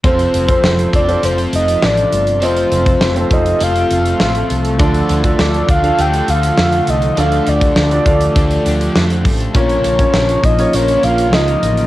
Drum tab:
HH |xxxx-xxxxxxx-xxx|xxxx-xxxxxxx-xxx|xxxx-xxxxxxx-xxx|xxxx-xxxxxxx-xox|
SD |----o-------o---|----o-------o---|----o-------o---|----o-------o---|
BD |o--o--o---------|---o--o---------|o--o--o---------|---o--o-o-----o-|

HH |xxxx-xxxxxxx-xxx|
SD |----o-------o---|
BD |o--o--o---------|